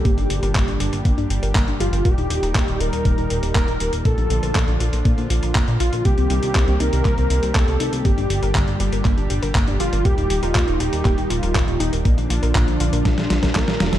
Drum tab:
HH |xxxxxxxxxxxxxxxx|xxxxxxxxxxxxxxxx|xxxxxxxxxxxxxxxx|xxxxxxxxxxxxxxxx|
CP |----x-------x---|----x-------x---|----x-------x---|----x---x---x---|
SD |----------------|----------------|----------------|----------------|
BD |o---o---o---o---|o---o---o---o---|o---o---o---o---|o---o---o---o---|

HH |xxxxxxxxxxxxxxxx|xxxxxxxxxxxxxxxx|xxxxxxxxxxxxxxxx|
CP |----x---x---x---|----x---x---x---|----x-------x---|
SD |----------------|----------------|--------oooooooo|
BD |o---o---o---o---|o---o---o---o---|o---o---o--oo---|